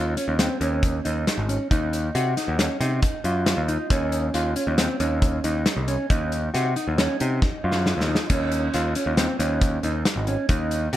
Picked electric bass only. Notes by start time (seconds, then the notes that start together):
Already playing: D#2
0.28 D#2
0.61 D#2
1.06 D#2
1.38 G#1
1.71 D#2
2.15 C3
2.48 D#2
2.80 C3
3.24 F#2
3.57 D#2
3.90 D#2
4.34 D#2
4.67 D#2
5.00 D#2
5.44 D#2
5.76 C2
6.10 D#2
6.55 C3
6.88 D#2
7.21 C3
7.64 F#2
7.97 D#2
8.30 D#2
8.74 D#2
9.06 D#2
9.39 D#2
9.83 D#2
10.16 G#1
10.49 D#2
10.93 C3